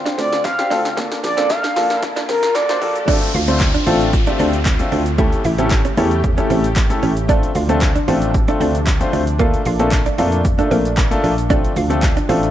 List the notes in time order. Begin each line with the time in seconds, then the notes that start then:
Already playing: D3 C4 D4 F4 C5, riser
0.06 D4, snare, closed hi-hat, shaker
0.18 D2 C4 D5, snare, open hi-hat, shaker
0.33 snare, closed hi-hat, shaker
0.44 F5, kick, snare, clap, shaker
0.58 C4 D4 F4 G4, snare, closed hi-hat, shaker
0.70 D2 C4 D4 F4 A4, snare, open hi-hat, shaker
0.85 snare, closed hi-hat, shaker
0.97 A#3 D4 F4 A4, kick, snare, shaker
1.12 snare, closed hi-hat, shaker
1.23 A#1 D5, muted clean electric guitar stroke, snare, open hi-hat, shaker
1.37 A#3 C4 D4 F4 A4, snare, closed hi-hat, shaker
1.50 F5, muted clean electric guitar stroke, kick, snare, clap, shaker
1.63 D4, snare, closed hi-hat, shaker
1.76 A#1 A#3 D4 F4 A4, snare, open hi-hat, shaker
1.90 snare, closed hi-hat, shaker
2.02 muted clean electric guitar stroke, kick, snare, shaker
2.16 D4, snare, closed hi-hat, shaker
2.29 A#1 C4 A#4, snare, open hi-hat, shaker
2.43 snare, closed hi-hat, shaker
2.55 D5, snare, clap, shaker
2.69 A#3 D4 F4 C5, snare, closed hi-hat, shaker
2.81 A#1 A#3 D4 F4 A4, open hi-hat, shaker
2.96 closed hi-hat, shaker
3.08 D3 A3 C4 D4 F4 A4 D5, kick, crash, downlifter, shaker
3.22 closed hi-hat, shaker
3.34 D2 F4 F5, muted clean electric guitar stroke, open hi-hat, shaker
3.48 A3 C4 D4 F4 C5, closed hi-hat, shaker
3.60 muted clean electric guitar stroke, kick, clap, shaker
3.74 D4, closed hi-hat, shaker
3.86 A1 A3 C4 D4 F4 A4 C5, open hi-hat, shaker
4.00 closed hi-hat, shaker
4.13 muted clean electric guitar stroke, kick, shaker
4.27 A3 C4 D4 F4 G4, closed hi-hat, shaker
4.39 D2 C4 D4 D5, open hi-hat, shaker
4.53 closed hi-hat, shaker
4.66 kick, clap, shaker
4.79 A3 C4 D4 F4 A4, closed hi-hat, shaker
4.92 D2 D4, open hi-hat, shaker
5.06 closed hi-hat, shaker
5.18 C#3 A3 C#4 E4 G4 A4 E5, kick, shaker
5.33 closed hi-hat, shaker
5.44 A1 E4 E5, muted clean electric guitar stroke, open hi-hat, shaker
5.58 A3 C4 C#4 E4 G4 A4, closed hi-hat, shaker
5.71 muted clean electric guitar stroke, kick, clap, shaker
5.85 C#4, closed hi-hat, shaker
5.97 E2 A3 C#4 E4 G4 A4 C#5, open hi-hat, shaker
6.11 closed hi-hat, shaker
6.24 muted clean electric guitar stroke, kick, shaker
6.37 A3 C#4 E4 G4 A4, closed hi-hat, shaker
6.50 A1 A3 C4 A4, open hi-hat, shaker
6.64 closed hi-hat, shaker
6.76 kick, clap, shaker
6.90 A3 C#4 E4 G4 A4, closed hi-hat, shaker
7.03 A1 C#4, open hi-hat, shaker
7.17 closed hi-hat, shaker
7.29 C3 F3 A3 C4 D4 F4 A4 D5, kick, shaker
7.43 closed hi-hat, shaker
7.55 D2 F4 F5, muted clean electric guitar stroke, open hi-hat, shaker
7.69 A3 C4 D4 F4 A4, closed hi-hat, shaker
7.82 muted clean electric guitar stroke, kick, clap, shaker
7.96 D4, closed hi-hat, shaker
8.08 A1 A3 C4 D4 F4 A4 C5, open hi-hat, shaker
8.22 closed hi-hat, shaker
8.34 muted clean electric guitar stroke, kick, shaker
8.48 A3 C4 D4 F4 A4, closed hi-hat, shaker
8.60 D2 C4 D4 D5, open hi-hat, shaker
8.75 closed hi-hat, shaker
8.87 kick, clap, shaker
9.00 A3 C4 D4 F4 C5, closed hi-hat, shaker
9.13 D2 D4, open hi-hat, shaker
9.27 closed hi-hat, shaker
9.39 A#2 A3 A#3 D4 F4 A4 F5, kick, shaker
9.54 closed hi-hat, shaker
9.65 A#1 F4 F5, muted clean electric guitar stroke, open hi-hat, shaker
9.79 A3 A#3 C4 D4 F4 A4, closed hi-hat, shaker
9.92 muted clean electric guitar stroke, kick, clap, shaker
10.06 D4, closed hi-hat, shaker
10.18 F2 A3 A#3 D4 F4 A4 D5, open hi-hat, shaker
10.32 closed hi-hat, shaker
10.45 muted clean electric guitar stroke, kick, shaker
10.58 A3 A#3 D4 F4 A4, closed hi-hat, shaker
10.71 A#1 A#3 C4 A#4, open hi-hat, shaker
10.85 closed hi-hat, shaker
10.97 kick, clap, shaker
11.11 A3 A#3 D4 F4 A4, closed hi-hat, shaker
11.24 A#1 D4, open hi-hat, shaker
11.38 closed hi-hat, shaker
11.50 C3 F3 A3 C4 D4 F4 A4 D5, kick, shaker
11.65 closed hi-hat, shaker
11.76 D2 F4 F5, muted clean electric guitar stroke, open hi-hat, shaker
11.90 A3 C4 D4 F4 A4, closed hi-hat, shaker
12.03 muted clean electric guitar stroke, kick, clap, shaker
12.17 D4, closed hi-hat, shaker
12.29 A1 A3 C4 D4 F4 A4 C5, open hi-hat, shaker
12.43 closed hi-hat, shaker